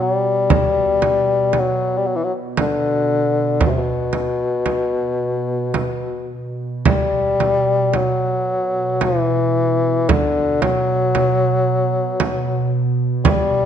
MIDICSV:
0, 0, Header, 1, 4, 480
1, 0, Start_track
1, 0, Key_signature, 2, "minor"
1, 0, Tempo, 1039861
1, 235, Time_signature, 3, 2, 24, 8
1, 2155, Tempo, 1090909
1, 4075, Tempo, 1052632
1, 6183, End_track
2, 0, Start_track
2, 0, Title_t, "Bassoon"
2, 0, Program_c, 0, 70
2, 10, Note_on_c, 0, 55, 84
2, 735, Note_on_c, 0, 54, 79
2, 742, Note_off_c, 0, 55, 0
2, 913, Note_on_c, 0, 55, 67
2, 920, Note_off_c, 0, 54, 0
2, 955, Note_on_c, 0, 54, 65
2, 962, Note_off_c, 0, 55, 0
2, 996, Note_on_c, 0, 52, 68
2, 1003, Note_off_c, 0, 54, 0
2, 1033, Note_on_c, 0, 54, 68
2, 1040, Note_off_c, 0, 52, 0
2, 1073, Note_off_c, 0, 54, 0
2, 1204, Note_on_c, 0, 50, 81
2, 1688, Note_on_c, 0, 47, 58
2, 1695, Note_off_c, 0, 50, 0
2, 1702, Note_on_c, 0, 48, 48
2, 1709, Note_off_c, 0, 47, 0
2, 1744, Note_on_c, 0, 47, 65
2, 1751, Note_off_c, 0, 48, 0
2, 2886, Note_off_c, 0, 47, 0
2, 3130, Note_on_c, 0, 55, 90
2, 3604, Note_on_c, 0, 54, 80
2, 3610, Note_off_c, 0, 55, 0
2, 4075, Note_on_c, 0, 52, 79
2, 4081, Note_off_c, 0, 54, 0
2, 4559, Note_on_c, 0, 50, 81
2, 4566, Note_off_c, 0, 52, 0
2, 4802, Note_on_c, 0, 54, 91
2, 4809, Note_off_c, 0, 50, 0
2, 5757, Note_off_c, 0, 54, 0
2, 5997, Note_on_c, 0, 55, 93
2, 6183, Note_off_c, 0, 55, 0
2, 6183, End_track
3, 0, Start_track
3, 0, Title_t, "Ambient pad"
3, 0, Program_c, 1, 92
3, 0, Note_on_c, 1, 47, 51
3, 3123, Note_off_c, 1, 47, 0
3, 3128, Note_on_c, 1, 47, 51
3, 6183, Note_off_c, 1, 47, 0
3, 6183, End_track
4, 0, Start_track
4, 0, Title_t, "Frame drum"
4, 231, Note_on_c, 9, 64, 62
4, 278, Note_off_c, 9, 64, 0
4, 471, Note_on_c, 9, 64, 47
4, 517, Note_off_c, 9, 64, 0
4, 707, Note_on_c, 9, 64, 48
4, 753, Note_off_c, 9, 64, 0
4, 1188, Note_on_c, 9, 64, 54
4, 1234, Note_off_c, 9, 64, 0
4, 1664, Note_on_c, 9, 64, 60
4, 1711, Note_off_c, 9, 64, 0
4, 1905, Note_on_c, 9, 64, 47
4, 1952, Note_off_c, 9, 64, 0
4, 2150, Note_on_c, 9, 64, 43
4, 2194, Note_off_c, 9, 64, 0
4, 2627, Note_on_c, 9, 64, 47
4, 2671, Note_off_c, 9, 64, 0
4, 3117, Note_on_c, 9, 64, 69
4, 3161, Note_off_c, 9, 64, 0
4, 3358, Note_on_c, 9, 64, 47
4, 3402, Note_off_c, 9, 64, 0
4, 3592, Note_on_c, 9, 64, 50
4, 3636, Note_off_c, 9, 64, 0
4, 4065, Note_on_c, 9, 64, 53
4, 4111, Note_off_c, 9, 64, 0
4, 4558, Note_on_c, 9, 64, 64
4, 4603, Note_off_c, 9, 64, 0
4, 4799, Note_on_c, 9, 64, 56
4, 4845, Note_off_c, 9, 64, 0
4, 5040, Note_on_c, 9, 64, 51
4, 5086, Note_off_c, 9, 64, 0
4, 5519, Note_on_c, 9, 64, 59
4, 5565, Note_off_c, 9, 64, 0
4, 5998, Note_on_c, 9, 64, 72
4, 6044, Note_off_c, 9, 64, 0
4, 6183, End_track
0, 0, End_of_file